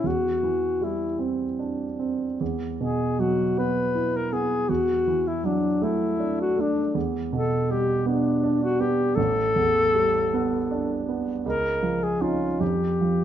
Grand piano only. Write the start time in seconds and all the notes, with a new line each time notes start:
0.04 E2
0.43 E3
0.81 G3
1.19 C4
1.59 D4
1.99 C4
2.40 E2
2.81 B2
3.19 F#3
3.57 B3
3.95 E4
4.33 B3
4.69 E2
5.07 E3
5.44 F#3
5.82 A3
6.20 D4
6.56 A3
6.95 E2
7.33 B2
7.70 G3
8.06 B3
8.44 D4
8.80 B3
9.17 A1
9.56 E2
9.95 G3
10.34 B3
10.71 D4
11.09 B3
11.46 C#2
11.83 F3
12.21 C#4 D#4
12.60 F2
13.01 F3